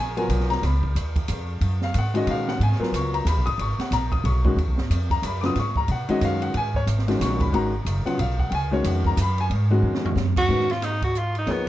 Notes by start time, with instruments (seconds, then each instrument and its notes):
Already playing: upright bass A#1, grand piano A#5
0.00 grand piano G#5
0.17 grand piano F#3 B3 F4 A#4 G#5, ride
0.29 upright bass B1, hi-hat pedal, ride
0.40 snare
0.50 grand piano A#5, snare, ride
0.62 upright bass C#2, grand piano B5, snare, ride
0.83 kick
0.95 upright bass D#2, hi-hat pedal, ride
1.16 kick, ride
1.28 upright bass F2, hi-hat pedal, ride
1.61 upright bass F#2, ride
1.81 grand piano F5, snare
1.94 upright bass G#2, hi-hat pedal, ride
1.99 grand piano F#5
2.14 grand piano D#3 G#3 C#4 F#4 D#5, ride
2.26 upright bass A#2, ride
2.31 grand piano F5
2.48 grand piano F#5, snare
2.60 upright bass G#2, grand piano G#5, ride
2.72 snare
2.79 grand piano F#3 B3 F4 A#4, muted upright bass stroke, snare
2.92 upright bass C#2, grand piano C#6, hi-hat pedal, ride
3.14 grand piano A#5, ride
3.25 upright bass D#2, grand piano B5, hi-hat pedal, ride
3.36 upright bass B1
3.46 upright bass G#1, grand piano D#6, ride
3.58 upright bass G#1, grand piano C#6, ride
3.78 grand piano F#5, muted upright bass stroke, snare, ride
3.91 upright bass A#1, grand piano A#5, snare, hi-hat pedal, ride
4.12 grand piano D#6, kick, ride
4.24 upright bass B1, grand piano C#6, ride
4.44 grand piano D#3 G#3 C#4 F#4, kick
4.56 upright bass D#2, ride
4.68 upright bass B1
4.78 upright bass G#1, snare
4.90 upright bass F2, hi-hat pedal, ride
5.10 grand piano A#5, kick, ride
5.22 upright bass F#2, grand piano B5, hi-hat pedal, ride
5.41 grand piano C#3 F#3 B3 F4 D6, snare, ride
5.46 grand piano D#6
5.55 upright bass G#2, snare, ride
5.59 grand piano C#6
5.76 grand piano A#5, kick
5.88 upright bass B2, grand piano F#5, ride
6.09 grand piano D#3 G#3 C#4 F#4 D#5, muted upright bass stroke, ride
6.21 upright bass F#2, grand piano F5, hi-hat pedal, ride
6.42 grand piano F#5, ride
6.54 upright bass G#2, grand piano G#5, ride
6.74 grand piano C#5, kick
6.87 upright bass G#1, hi-hat pedal, ride
6.99 snare
7.08 grand piano D#3 G#3 C#4 F#4, snare, ride
7.20 upright bass A#1, grand piano C#6, snare, hi-hat pedal, ride
7.40 grand piano B5, kick, ride
7.52 upright bass G#1, grand piano D#3 G#3 C#4 F#4 A#5, ride
7.85 upright bass F#1, hi-hat pedal, ride
8.05 grand piano C#3 F#3 B3 F4 F#5, muted upright bass stroke, ride
8.18 upright bass B1, grand piano F5, ride
8.39 grand piano F#5, kick
8.50 upright bass C#2, grand piano G5, ride
8.55 grand piano G#5
8.71 grand piano D#3 G#3 C#4 F#4 C#5
8.84 upright bass F2, grand piano F#5, hi-hat pedal, ride
9.04 grand piano A#5, kick
9.17 upright bass F#2, hi-hat pedal, ride
9.21 grand piano B5
9.38 grand piano G#5, ride
9.50 upright bass G#2, ride
9.70 grand piano D#3 G#3 C#4 F#4
9.82 upright bass F2
9.94 snare
10.05 floor tom
10.16 upright bass F#2, snare, hi-hat pedal
10.36 tenor saxophone F#4, kick, crash
10.48 upright bass G#2, grand piano D#3 G#3 C#4 F#4 B4
10.60 snare
10.70 tenor saxophone F4, snare, ride
10.82 tenor saxophone D#4, snare, hi-hat pedal, ride
11.02 tenor saxophone F#4, kick, ride
11.15 tenor saxophone F4, hi-hat pedal
11.35 tenor saxophone D#4, ride
11.47 upright bass D#2, grand piano F3 A#3 D#4 G#4 C#5, snare, ride
11.51 tenor saxophone B3